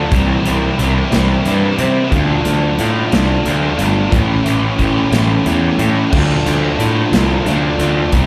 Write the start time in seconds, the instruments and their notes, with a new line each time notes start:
Already playing: distorted electric guitar A3, overdriven electric guitar D4
0.10 picked electric bass C2, distorted electric guitar C3 E3 G3 C4 E4, overdriven electric guitar A#3 G4, kick, closed hi-hat
0.43 picked electric bass C2, distorted electric guitar G3 C4 E4, overdriven electric guitar A#3 G4, closed hi-hat
0.77 picked electric bass C2, distorted electric guitar E3 G3 C4 E4, overdriven electric guitar A#3 G4, closed hi-hat
1.11 picked electric bass C2, distorted electric guitar G3 C4 E4, overdriven electric guitar A#3 G4, snare, closed hi-hat
1.44 picked electric bass G2, distorted electric guitar E3 G3 C4 E4, overdriven electric guitar A#3 G4, closed hi-hat
1.78 picked electric bass C3, distorted electric guitar G3 C4 E4, overdriven electric guitar A#3 G4, closed hi-hat
2.11 picked electric bass D2, distorted electric guitar D3 A3 D4 F4, overdriven electric guitar F3, kick, closed hi-hat
2.44 picked electric bass D2, distorted electric guitar A3 D4 F4, closed hi-hat
2.78 picked electric bass A2, distorted electric guitar D3 A3 D4 F4, overdriven electric guitar F3, closed hi-hat
3.11 picked electric bass C2, distorted electric guitar A3 D4 F4, snare, closed hi-hat
3.44 picked electric bass D2, distorted electric guitar D3 A3 D4 F4, overdriven electric guitar F3, closed hi-hat
3.77 picked electric bass G1, distorted electric guitar A3 D4 F4, closed hi-hat
4.11 picked electric bass A1, distorted electric guitar A2 E3 A3 C#4 E4, overdriven electric guitar G4, kick, closed hi-hat
4.44 picked electric bass A1, distorted electric guitar A3 C#4 E4, overdriven electric guitar G4, closed hi-hat
4.78 picked electric bass A1, distorted electric guitar E3 A3 C#4 E4, overdriven electric guitar G4, kick, closed hi-hat
5.11 picked electric bass A1, distorted electric guitar A3 C#4 E4, overdriven electric guitar G4, snare, closed hi-hat
5.45 picked electric bass E2, distorted electric guitar E3 A3 C#4 E4, overdriven electric guitar G4, closed hi-hat
5.79 picked electric bass A2, distorted electric guitar A3 C#4 E4, overdriven electric guitar G4, closed hi-hat
6.11 picked electric bass D2, distorted electric guitar D3 A3 D4 F4, kick, crash
6.45 picked electric bass D2, distorted electric guitar A3 D4 F4, closed hi-hat
6.78 picked electric bass A2, distorted electric guitar D3 A3 D4 F4, closed hi-hat
7.12 picked electric bass C2, distorted electric guitar A3 D4 F4, snare, closed hi-hat
7.45 picked electric bass D2, distorted electric guitar D3 A3 D4 F4, closed hi-hat
7.79 picked electric bass D2, distorted electric guitar A3 D4 F4, closed hi-hat
8.12 picked electric bass C2, distorted electric guitar C3 E3 G3 C4 E4, overdriven electric guitar A#3 G4, kick, closed hi-hat